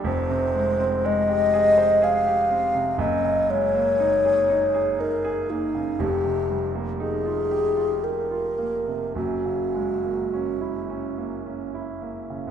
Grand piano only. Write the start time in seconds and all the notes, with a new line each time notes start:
0.04 F1 F2
0.30 C3
0.55 G#3
0.80 C4
1.05 G#3
1.29 G4
1.54 G#4
1.78 C5
2.02 G#4
2.26 G4
2.51 C4
2.75 C3
2.98 F#1 F#2
3.25 C#3
3.49 G#3
3.74 A#3
4.00 D#4
4.25 G#4
4.50 D#4
4.74 G#4
4.99 D#4
5.24 G#4
5.50 A#3
5.75 C#3
5.99 F1 F2
6.25 C3
6.50 G3
6.75 A#3
7.00 D#4
7.25 F4
7.51 G4
7.77 F4
8.04 G4
8.31 F4
8.59 A#3
8.87 C3
9.15 F#1 F#2
9.46 C#3
9.75 G#3
10.04 A#3
10.33 C#4
10.61 E4
10.90 C#4
11.18 A#3
11.46 C#4
11.74 E4
12.02 A#3
12.30 C#3
12.47 G#2